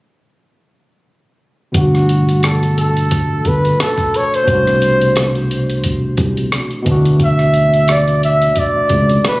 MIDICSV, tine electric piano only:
0, 0, Header, 1, 2, 480
1, 0, Start_track
1, 0, Tempo, 681818
1, 1226, Time_signature, 4, 2, 24, 8
1, 6618, End_track
2, 0, Start_track
2, 0, Title_t, "Tine electric piano"
2, 0, Program_c, 0, 4
2, 1211, Note_on_c, 0, 47, 56
2, 1225, Note_on_c, 0, 52, 50
2, 1240, Note_on_c, 0, 57, 51
2, 1257, Note_on_c, 0, 62, 53
2, 1273, Note_on_c, 0, 66, 57
2, 1355, Control_c, 0, 64, 127
2, 3110, Note_off_c, 0, 47, 0
2, 3117, Note_off_c, 0, 52, 0
2, 3124, Note_on_c, 0, 47, 56
2, 3125, Note_off_c, 0, 57, 0
2, 3133, Note_off_c, 0, 62, 0
2, 3139, Note_on_c, 0, 52, 52
2, 3141, Note_off_c, 0, 66, 0
2, 3155, Note_on_c, 0, 57, 51
2, 3156, Control_c, 0, 64, 0
2, 3168, Note_on_c, 0, 62, 53
2, 3184, Note_on_c, 0, 66, 66
2, 3299, Control_c, 0, 64, 127
2, 4787, Note_off_c, 0, 47, 0
2, 4794, Note_off_c, 0, 52, 0
2, 4802, Note_off_c, 0, 57, 0
2, 4805, Note_on_c, 0, 47, 68
2, 4809, Note_off_c, 0, 62, 0
2, 4817, Note_off_c, 0, 66, 0
2, 4820, Note_on_c, 0, 52, 59
2, 4834, Control_c, 0, 64, 0
2, 4834, Note_on_c, 0, 57, 57
2, 4851, Note_on_c, 0, 62, 63
2, 4867, Note_on_c, 0, 66, 72
2, 4962, Control_c, 0, 64, 127
2, 6618, Note_off_c, 0, 47, 0
2, 6618, Note_off_c, 0, 52, 0
2, 6618, Note_off_c, 0, 57, 0
2, 6618, Note_off_c, 0, 62, 0
2, 6618, Note_off_c, 0, 66, 0
2, 6618, End_track
0, 0, End_of_file